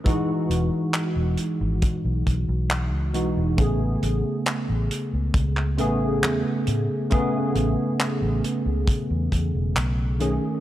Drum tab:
HH |x-x-x-x-x-x-x-x-|x-x-x-x-x-x-x-x-|x-x-x-x-x-x-x-x-|
CP |----x-------x---|----x----x--x---|----x-------x---|
BD |o-------o-o-----|o-------o-------|o-------o-o-----|